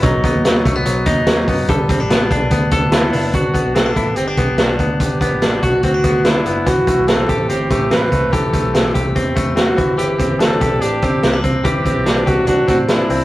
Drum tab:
HH |xxxxxxxo|xxxxxxxo|xxxxxxxx|xxxxxxxx|
SD |--o---o-|--o---o-|--o---o-|--o---o-|
BD |oo-o-o-o|oo-ooo--|oo-o-o-o|oo-ooo--|

HH |xxxxxxxx|xxxxxxxx|xxxxxxxx|xxxxxxxo|
SD |--o---o-|--o---o-|--o---o-|--o---o-|
BD |oo-o-o-o|oo-ooo-o|-o-o-o-o|oo-ooo--|